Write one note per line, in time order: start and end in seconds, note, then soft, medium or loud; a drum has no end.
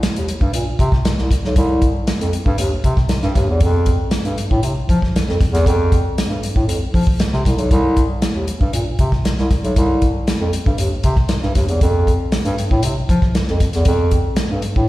0.03 snare loud
0.03 closed hi-hat loud
0.16 0.27 D#2 medium
0.16 closed hi-hat medium
0.28 closed hi-hat medium
0.41 0.52 G2 loud
0.41 kick medium
0.53 0.65 A#2 medium
0.53 closed hi-hat loud
0.79 0.90 C3 loud
0.79 kick medium
0.79 closed hi-hat medium
0.92 kick loud
0.92 snare soft
1.05 1.11 C2 medium
1.05 snare loud
1.05 closed hi-hat medium
1.18 1.29 C2 medium
1.18 snare soft
1.31 kick medium
1.31 snare soft
1.31 closed hi-hat medium
1.45 1.55 B1 medium
1.45 snare soft
1.56 1.89 C2 loud
1.56 kick loud
1.56 closed hi-hat medium
1.82 kick medium
1.82 closed hi-hat medium
2.07 snare loud
2.07 closed hi-hat medium
2.21 2.31 F2 medium
2.21 closed hi-hat medium
2.33 closed hi-hat medium
2.46 2.57 G2 medium
2.46 kick medium
2.58 2.70 D#2 medium
2.58 closed hi-hat loud
2.84 2.95 C3 medium
2.84 kick medium
2.84 closed hi-hat medium
2.97 kick medium
2.97 snare soft
3.09 snare loud
3.09 closed hi-hat medium
3.22 3.34 G2 loud
3.22 snare soft
3.35 3.46 D#2 medium
3.35 kick medium
3.35 snare soft
3.35 closed hi-hat medium
3.49 3.60 E2 medium
3.60 3.94 F2 loud
3.60 kick loud
3.60 closed hi-hat medium
3.86 kick medium
3.86 closed hi-hat medium
4.11 snare loud
4.11 closed hi-hat loud
4.25 4.36 G2 medium
4.25 closed hi-hat soft
4.38 closed hi-hat medium
4.51 4.62 A2 medium
4.51 kick medium
4.62 4.74 C3 medium
4.62 closed hi-hat loud
4.89 5.00 F3 medium
4.89 kick medium
4.89 closed hi-hat medium
5.02 kick medium
5.02 snare soft
5.14 5.19 F2 medium
5.14 snare loud
5.14 closed hi-hat medium
5.27 5.38 F2 medium
5.27 snare soft
5.41 kick loud
5.41 snare soft
5.41 closed hi-hat medium
5.53 5.64 E2 loud
5.53 snare soft
5.53 closed hi-hat medium
5.66 5.99 F2 loud
5.66 kick loud
5.66 closed hi-hat medium
5.92 kick medium
5.92 closed hi-hat medium
6.18 snare loud
6.18 closed hi-hat medium
6.29 6.40 G2 medium
6.43 closed hi-hat medium
6.56 6.67 A2 medium
6.56 kick medium
6.67 6.78 F2 medium
6.67 closed hi-hat loud
6.94 7.05 F3 medium
6.94 kick medium
6.94 open hi-hat medium
7.07 kick loud
7.19 snare loud
7.19 closed hi-hat medium
7.32 7.43 C3 medium
7.32 snare soft
7.45 7.56 C2 medium
7.45 kick medium
7.45 snare soft
7.45 closed hi-hat medium
7.57 7.68 B1 medium
7.57 closed hi-hat medium
7.71 8.03 C2 loud
7.71 kick loud
7.71 closed hi-hat medium
7.97 kick medium
7.97 closed hi-hat medium
8.22 snare loud
8.22 closed hi-hat medium
8.35 8.46 D#2 medium
8.47 closed hi-hat medium
8.61 8.72 G2 medium
8.61 kick medium
8.73 8.84 A#2 medium
8.73 closed hi-hat loud
8.99 9.10 C3 medium
8.99 kick loud
8.99 closed hi-hat medium
9.12 kick loud
9.12 snare soft
9.25 9.30 C2 medium
9.25 snare medium
9.25 closed hi-hat medium
9.37 9.48 C2 medium
9.37 snare soft
9.51 kick loud
9.51 snare soft
9.51 closed hi-hat medium
9.63 9.74 B1 medium
9.63 closed hi-hat soft
9.76 10.09 C2 loud
9.76 kick loud
9.76 closed hi-hat medium
10.02 kick medium
10.02 closed hi-hat medium
10.27 snare loud
10.27 closed hi-hat loud
10.40 10.51 F2 medium
10.53 closed hi-hat medium
10.66 10.77 G2 loud
10.66 kick medium
10.78 10.90 D#2 medium
10.78 closed hi-hat loud
11.03 11.15 C3 loud
11.03 kick medium
11.03 closed hi-hat medium
11.16 kick loud
11.16 snare soft
11.29 snare loud
11.29 closed hi-hat medium
11.42 11.53 G2 medium
11.42 snare soft
11.55 11.66 D#2 medium
11.55 kick medium
11.55 snare soft
11.55 closed hi-hat medium
11.68 11.79 E2 medium
11.68 closed hi-hat medium
11.81 12.14 F2 loud
11.81 kick loud
11.81 closed hi-hat medium
12.07 kick medium
12.07 closed hi-hat medium
12.32 snare loud
12.32 closed hi-hat medium
12.45 12.56 G2 loud
12.45 closed hi-hat soft
12.58 closed hi-hat medium
12.71 12.82 A2 medium
12.71 kick medium
12.83 12.94 C3 medium
12.83 closed hi-hat loud
13.09 13.20 F3 loud
13.09 kick loud
13.09 closed hi-hat medium
13.22 kick loud
13.22 snare soft
13.35 13.40 F2 soft
13.35 snare loud
13.35 closed hi-hat medium
13.47 13.59 F2 medium
13.47 snare soft
13.60 kick medium
13.60 snare soft
13.60 closed hi-hat medium
13.73 13.85 E2 medium
13.73 snare soft
13.73 closed hi-hat medium
13.85 14.19 F2 loud
13.85 kick loud
13.85 closed hi-hat medium
14.11 kick medium
14.11 closed hi-hat medium
14.36 snare loud
14.36 closed hi-hat medium
14.51 14.62 G2 medium
14.62 closed hi-hat medium
14.76 14.87 A2 medium
14.76 kick medium